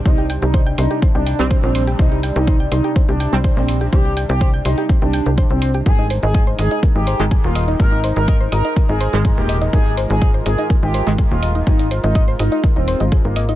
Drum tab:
HH |xxoxxxoxxxoxxxox|xxoxxxoxxxoxxxox|xxoxxxoxxxoxxxox|xxoxxxoxxxoxxxox|
BD |o---o---o---o---|o---o---o---o---|o---o---o---o---|o---o---o---o---|

HH |xxoxxxoxxxoxxxox|xxoxxxoxxxoxxxox|xooxxxoxxxoxxxox|
BD |o---o---o---o---|o---o---o---o---|o---o---o---o---|